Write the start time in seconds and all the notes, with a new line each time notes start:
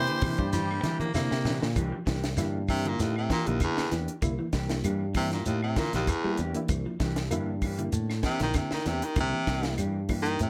Already playing: E3 A#3 D4 E4 G4 C5
0.07 D3, closed hi-hat
0.21 C3 E3 A#3 D4 G4, kick, open hi-hat, high conga, low conga, claves, shekere
0.38 G2 G3, kick, closed hi-hat
0.53 E3 G3, snare, closed hi-hat, high conga, shekere
0.71 A#3 D4 G4, claves
0.84 E3 A#3 D4 G4, snare, closed hi-hat, high conga, shekere
1.00 A#3, closed hi-hat, high conga
1.14 C3 D3 A#3 D4 E4, snare, claves, shekere
1.31 C3, snare
1.45 E3 A#3 D4 G4, snare, low conga, shekere
1.62 A#2 D3, snare
1.76 C2 E3 A#3 D4 G4, kick, closed hi-hat, claves, shekere
1.92 F3
2.06 C2 E3 A#3 D4 G4, kick, snare, closed hi-hat, shekere
2.24 snare, closed hi-hat
2.37 G2 D3 E3 A#3 D4 E4 G4, snare, closed hi-hat, claves, shekere
2.68 C3 E3 A#3 D4 G4, kick, open hi-hat, claves, shekere
2.84 D3 A#3 D4 E4, closed hi-hat
2.88 A#2
2.99 D#2 A2, snare, closed hi-hat, shekere
3.16 C3, claves
3.30 A#2 E3 A#3 D4 G4, kick, snare, closed hi-hat, shekere
3.46 A#1 D#2 D3 A#3 D4 E4, closed hi-hat
3.60 E2 D3, kick, closed hi-hat, claves, shekere
3.77 A#3 D4 G4, muted fingered electric bass stroke, snare
3.91 E2 E3 A#3 D4 G4, snare, closed hi-hat, shekere
4.08 closed hi-hat
4.22 C2 D3 A#3 D4 E4, kick, closed hi-hat, claves, shekere
4.39 E3
4.53 C2 E3 A#3 D4 G4, kick, snare, closed hi-hat, shekere
4.69 A#3 D4 E4, snare, closed hi-hat
4.84 G2 E3 G3 A#3 D4 G4, closed hi-hat, claves, shekere
5.14 C3 E3 A#3 D4 E4 G4, kick, open hi-hat, claves, shekere
5.32 A#2, snare, closed hi-hat
5.46 D#2 A2, closed hi-hat, shekere
5.63 C3, claves
5.76 A#2 D3 E3 A#3 D4 E4, muted clean electric guitar stroke, kick, snare, closed hi-hat, shekere
5.93 A#1 D#2, snare, closed hi-hat
6.07 E2, kick, closed hi-hat, claves, shekere
6.24 G3 A#3 D4 E4 G4, muted fingered electric bass stroke
6.37 E2 A#3 D4 G4, closed hi-hat, shekere
6.54 E3 A#3 D4 E4, closed hi-hat
6.68 C2 E3, kick, closed hi-hat, claves, shekere
6.86 F3
7.00 C2 E3 A#3 D4 G4, kick, snare, closed hi-hat, shekere
7.16 snare, closed hi-hat
7.31 G2 D3 E3 A#3 D4 E4 G4, closed hi-hat, claves, shekere
7.62 E3 A#3 D4 G4, kick, open hi-hat, claves, shekere
7.78 D3 A#3 D4 E4, closed hi-hat
7.92 A2, closed hi-hat, shekere
8.10 snare, claves
8.23 C3 E3 A#3 D4 G4, muted clean electric guitar stroke, kick, snare, closed hi-hat, shekere
8.40 A#1 D3 D#3 A#3 D4 E4, snare, closed hi-hat
8.54 C3 D3, kick, snare, closed hi-hat, claves, shekere
8.71 D#3, muted fingered electric bass stroke, snare
8.86 E2 C3 E3 A#3 D4 G4, snare, closed hi-hat, shekere
9.02 D#3, closed hi-hat
9.16 C2 D3 A#3 D4 E4, kick, closed hi-hat, claves, shekere
9.20 C3
9.33 E3
9.47 C2 E3 A#3 D4 G4, kick, snare, closed hi-hat, shekere
9.63 A#3 D4 E4, snare, closed hi-hat
9.78 G2 E3 G3 A#3 D4 G4, closed hi-hat, claves, shekere
10.08 E3 A#3 D4 E4 G4, kick, open hi-hat, claves, shekere
10.22 D#3, closed hi-hat
10.39 A2 C3, closed hi-hat, shekere